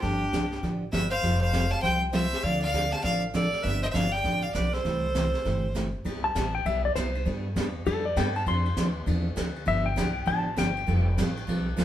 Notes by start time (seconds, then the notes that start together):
0.01 G1 D3 F3 B3 D4 G4, brush sweep, kick, snare
0.33 B1 D3 F3 B3 D4 G4, kick, snare, hi-hat pedal
0.52 snare
0.63 A1 D3 F3 B3 D4 G4, brush sweep, kick, snare
0.92 G1 D3 F3 B3 D4 G4 B4 E5, kick, snare, hi-hat pedal
1.10 C5 F5
1.23 F1 F3 G3 C4 F4 A4, brush sweep, kick, snare
1.41 C5 F5
1.53 F3 G3 C4 F4 A4, kick, snare, hi-hat pedal
1.71 F5 A5, snare
1.82 C2 F3 G3 C4 F4 A4 C5 G5, brush sweep, kick, snare
2.12 F3 G3 C4 F4 A4 C5 E5, kick, snare, hi-hat pedal
2.33 snare
2.43 D2 D3 F3 C4 D4 A4 D5 F5, brush sweep, kick, snare
2.61 D5 F5
2.73 D3 F3 C4 D4 A4, kick, snare, hi-hat pedal
2.91 F5 A5, snare
3.03 A1 D3 F3 C4 D4 A4 D5 F5, brush sweep, kick, snare
3.34 D3 F3 C4 D4 A4 D5, kick, snare, hi-hat pedal
3.53 snare
3.62 G1 D3 F3 B3 D4 G4 B4 E5, brush sweep, kick, snare
3.82 C5 E5
3.91 G1 D3 F3 B3 D4 G4 C5 D5 E5 F5, kick, snare, hi-hat pedal
4.11 D5 G5, snare
4.24 A1 D3 F3 B3 D4 G4, brush sweep, kick, snare
4.42 D5 F5
4.54 B1 D3 F3 B3 D4 G4 B4 D5, kick, snare, hi-hat pedal
4.73 A4 C5, snare
4.85 C2 C3 E3 A3 E4 G4, brush sweep, kick, snare
5.15 C3 E3 A3 E4 G4, kick, snare, hi-hat pedal
5.34 snare
5.45 G1 C3 E3 A3 E4 G4, brush sweep, kick, snare
5.75 C3 E3 A3 E4 G4, kick, snare, hi-hat pedal
6.05 C2 C3 G3 B3 E4 G4, kick, ride
6.24 A5
6.35 A1 C3 G3 B3 E4 G4, kick, snare, hi-hat pedal, ride
6.55 G5
6.65 B1 C3 G3 B3 E4 G4 E5, kick, ride
6.85 D5
6.95 C2 C3 G3 B3 E4 G4 C5, kick, snare, hi-hat pedal, ride
7.15 ride
7.25 G2 G3 B3 D4 A4, kick, ride
7.56 E2 G3 B3 D4 A4, kick, snare, hi-hat pedal, ride
7.86 F2 G3 B3 D4 A4, kick, ride
8.05 D5
8.16 G2 G3 B3 D4 A4 G5, kick, snare, hi-hat pedal, ride
8.35 A5, ride
8.46 F2 F3 C4 D4 A4 C6, kick, ride
8.65 ride
8.77 D#2 F3 C4 D4 A4, kick, snare, hi-hat pedal, ride
9.06 E2 F3 C4 D4 A4, kick, ride
9.36 D2 F3 C4 D4 A4, kick, snare, hi-hat pedal, ride
9.56 ride
9.66 G1 D3 F3 B3 D4 G4 E5, kick, ride
9.86 G5
9.96 B1 D3 F3 B3 D4 G4, kick, snare, hi-hat pedal, ride
10.25 A1 D3 F3 B3 D4 G4 A5, kick, ride
10.56 G1 D3 F3 B3 D4 G4 G5, kick, snare, hi-hat pedal, ride
10.76 ride
10.87 F1 F3 G3 C4 F4 A4, kick, ride
11.17 A1 F3 G3 C4 F4 A4, kick, snare, hi-hat pedal, ride
11.37 ride
11.47 B1 F3 G3 C4 F4 A4, kick, ride
11.77 C2 F3 G3 C4 F4 A4, kick, snare, hi-hat pedal, ride